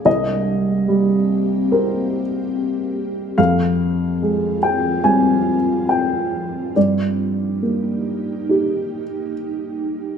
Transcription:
<<
  \new Staff \with { instrumentName = "Upright piano" } { \time 4/4 \key f \dorian \tempo 4 = 72 ees''1 | f''4. g''8 aes''4 g''4 | d''2. r4 | }
  \new Staff \with { instrumentName = "Upright piano" } { \time 4/4 \key f \dorian c,4 g4 <c' bes'>2 | f,4 aes4 <g c'>2 | g,4 bes4 <ees' g'>2 | }
  \new Staff \with { instrumentName = "Ambient pad" } { \time 4/4 \key f \dorian <bes c' g'>1 | <f c' f'>1 | <bes ees' g'>1 | }
>>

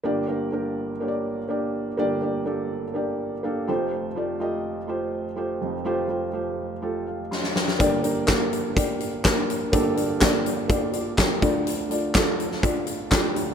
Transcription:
<<
  \new Staff \with { instrumentName = "Felt piano" } { \time 4/4 \key g \minor \tempo 4 = 124 << { r1 | r2. f''8 g''8 | r1 | r2 r8 <a' f''>8 <ees'' c'''>8 g''8~ |
g''8 r2. r8 | r2 r8 <f' d''>8 <bes' g''>4 | r1 | } \\ { <bes d' g' d''>8 <bes d' g' bes'>8 <bes d' g' bes'>8. r16 <bes d' g' cis'' d''>8. r16 <bes d' g' d''>8. r16 | <bes d' g' d''>8 <bes d' g' d''>8 <bes d' g' a'>8. r16 <bes d' g' d''>8. r16 <bes d' g' a'>8 <a f' g' c''>8~ | <a f' g' c''>8 <a f' g' d''>8 <a f' g' ees''>8. r16 <a f' g' c''>8. r16 <a f' g' c''>8. r16 | <a f' g' c''>8 <a f' g' c''>8 <a f' g' c''>8. r16 <a f' g' a'>8. r4 r16 |
<bes d' g' d''>8 <bes d' g' bes'>8 <bes d' g' a'>8. r16 <bes d' g' d''>8. r16 <bes d' g' bes'>8. r16 | <bes d' g' a'>8 <bes d' g' d''>8 <bes d' g' d''>8. r16 <bes d' g' d''>8. r8. <a d' f' d''>8~ | <a d' f' d''>8 <a d' f' d''>8 <a d' f' a'>8. r16 <a d' f' d''>8. r16 <a d' f' g'>8. r16 | } >> }
  \new Staff \with { instrumentName = "Felt piano" } { \clef bass \time 4/4 \key g \minor <g,, g,>1 | <g,, g,>2.~ <g,, g,>8 <f,, f,>8~ | <f,, f,>2.~ <f,, f,>8 <f,, f,>8~ | <f,, f,>2.~ <f,, f,>8 r8 |
<g,, g,>1 | <g,, g,>2.~ <g,, g,>8 <d, d>8~ | <d, d>2.~ <d, d>8 <d, d>8 | }
  \new DrumStaff \with { instrumentName = "Drums" } \drummode { \time 4/4 r4 r4 r4 r4 | r4 r4 r4 r4 | r4 r4 r4 r4 | r4 r4 r4 sn16 sn16 sn16 sn16 |
<hh bd>8 hh8 <hc hh bd sn>8 hh8 <hh bd>8 hh8 <hc hh bd sn>8 hh8 | <hh bd>8 hh8 <hc hh bd sn>8 hh8 <hh bd>8 hh8 <hc hh bd sn>8 <hh bd>8 | hh8 hh8 <hc hh bd sn>8 hh16 sn16 <hh bd>8 hh8 <hc hh bd sn>8 hh8 | }
>>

